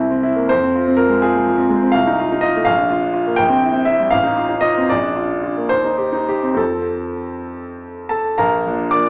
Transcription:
Already playing: C2 C4 E4 C5
0.10 C4
0.23 E4
0.36 A#3
0.49 F2 C5
0.63 C4
0.76 F4
0.87 C4
0.97 F4 A#4
1.09 G#3
1.22 F4 G#4
1.35 G#3
1.47 F3
1.58 C4
1.70 G#3
1.82 C4
1.92 C2 F5
2.07 D#4
2.20 F4
2.32 D#4
2.41 F4 D#5
2.56 A3
2.65 A#1 F5
2.78 D4
2.90 F4
3.02 D4
3.14 F4
3.27 A#3
3.36 A#1 G5
3.49 C4
3.62 E4
3.73 C4
3.85 E4 E5
4.00 G3
4.11 A1 F5
4.23 D#4
4.37 F4
4.49 D#4
4.61 F4 D#5
4.78 C4
4.89 A#1 D5
5.03 D4
5.16 F4
5.31 D4
5.44 F4
5.57 A#3
5.69 D#2 C5
5.84 D#4
5.97 G4
6.13 D#4
6.28 G4
6.43 C4
6.54 F2 F3 C4 A4
8.09 A4 A5
8.38 A#1 A#4 F5 A#5
8.67 F3 A#3 D4
8.91 F3 A#3 D4 D5 D6

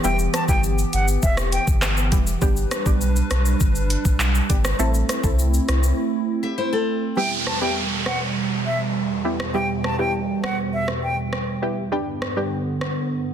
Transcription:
Already playing: E3 B3 G4
0.04 E1 G3 B3 E4 G4 G5, shaker
0.18 shaker
0.34 A5, cross-stick, closed hi-hat, shaker
0.48 G1 G3 B3 E4 G4 G5, kick, shaker
0.63 shaker
0.78 shaker
0.93 G1 F#5, closed hi-hat, shaker
1.08 shaker
1.22 E1 E5, kick, shaker
1.37 cross-stick, shaker
1.52 G5, closed hi-hat, shaker
1.67 G1, kick, shaker
1.82 cross-stick, clap, shaker
1.97 shaker
2.12 E1 G3 B3 E4 G4, kick, closed hi-hat, shaker
2.27 shaker
2.41 G1 G3 B3 D4 G4 B4, kick, shaker
2.56 shaker
2.71 cross-stick, closed hi-hat, shaker
2.86 B1 G3 B3 D4 G4, kick, shaker
3.01 shaker
3.16 shaker
3.31 B1, cross-stick, closed hi-hat, shaker
3.45 shaker
3.60 G1, kick, shaker
3.75 shaker
3.90 closed hi-hat, shaker
4.05 B1, kick, shaker
4.20 clap, shaker
4.35 shaker
4.49 G1 G3 B3 D4 G4, kick, closed hi-hat, shaker
4.64 cross-stick, shaker
4.79 A1 A3 C4 E4 A4, shaker
4.94 shaker
5.09 cross-stick, closed hi-hat, shaker
5.23 C2 A3 C4 E4 A4, kick, shaker
5.39 shaker
5.53 shaker
5.68 C2, cross-stick, closed hi-hat, shaker
5.83 shaker
6.43 G4 E5
6.58 E4 C5
6.73 C4 A4
7.17 E2 B2 G3 B3 E4 G4 G5, downlifter
7.47 A5, cross-stick
7.61 G3 B3 E4 G4 G5
8.06 F#5, cross-stick
8.66 E5
9.25 G3 B3 E4 G4
9.40 cross-stick
9.54 G3 B3 E4 G4 G5
9.84 A5, cross-stick
9.99 G3 B3 E4 G4 G5
10.44 F#5, cross-stick
10.73 E5
10.88 cross-stick
11.03 G5
11.33 cross-stick
11.62 G3 B3 E4 G4
11.92 G2 D3 G3 B3 D4 G4
12.22 cross-stick
12.37 G3 B3 D4 G4
12.81 cross-stick

